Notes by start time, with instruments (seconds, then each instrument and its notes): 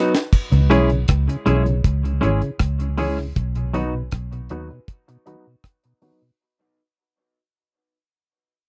Already playing: clean electric guitar F#3 B3 D#4 F#4, upright piano D#4 F#4 B4
0.15 snare
0.33 kick, crash
0.51 fingered electric bass C#2, tonewheel organ C#3, closed hi-hat
0.70 fingered electric bass B1, tonewheel organ E3 G#3 C#4, clean electric guitar G#3 C#4 E4 G#4, upright piano E4 G#4 C#5, closed hi-hat
0.90 tonewheel organ C#3, closed hi-hat
1.08 fingered electric bass C#2, kick, cross-stick, closed hi-hat
1.28 tonewheel organ C#3, closed hi-hat
1.46 fingered electric bass B1, tonewheel organ E3 G#3 C#4, clean electric guitar G#3 C#4 E4 G#4, upright piano E4 G#4 C#5, closed hi-hat
1.65 tonewheel organ C#3, upright piano G#4 C#5, muted clean electric guitar stroke, closed hi-hat
1.84 fingered electric bass C#2, kick, closed hi-hat
2.04 tonewheel organ C#3, closed hi-hat
2.21 fingered electric bass G#1, tonewheel organ E3 G#3 C#4, clean electric guitar G#3 C#4 E4 G#4, upright piano E4 G#4 C#5, closed hi-hat
2.42 tonewheel organ C#3, closed hi-hat
2.59 fingered electric bass C#2, kick, cross-stick, closed hi-hat
2.80 tonewheel organ C#3, closed hi-hat
2.97 tonewheel organ E3 G#3 C#4, clean electric guitar G#3 C#4 E4 G#4, upright piano E4 G#4 C#5, open hi-hat
3.19 tonewheel organ C#3
3.36 fingered electric bass B1, kick, closed hi-hat
3.55 tonewheel organ B2, closed hi-hat
3.73 tonewheel organ D#3 F#3 B3, clean electric guitar F#3 B3 D#4 F#4, upright piano D#4 F#4 B4, closed hi-hat
3.94 tonewheel organ B2
4.11 fingered electric bass B1, kick, cross-stick, closed hi-hat
4.32 tonewheel organ B2, closed hi-hat
4.49 fingered electric bass D#2, tonewheel organ D#3 F#3 B3, clean electric guitar F#3 B3 D#4 F#4, upright piano D#4 F#4 B4, closed hi-hat
4.70 tonewheel organ B2, upright piano F#4 B4, muted clean electric guitar stroke
4.88 kick, closed hi-hat
5.08 tonewheel organ B2, muted clean electric guitar stroke, closed hi-hat
5.26 tonewheel organ D#3 F#3 B3, clean electric guitar F#3 B3 D#4 F#4, upright piano D#4 F#4 B4, closed hi-hat
5.47 tonewheel organ B2
5.64 kick, cross-stick, closed hi-hat
5.84 tonewheel organ B2, closed hi-hat
6.02 tonewheel organ D#3 F#3 B3, clean electric guitar F#3 B3 D#4 F#4, upright piano D#4 F#4 B4, open hi-hat
6.22 tonewheel organ B2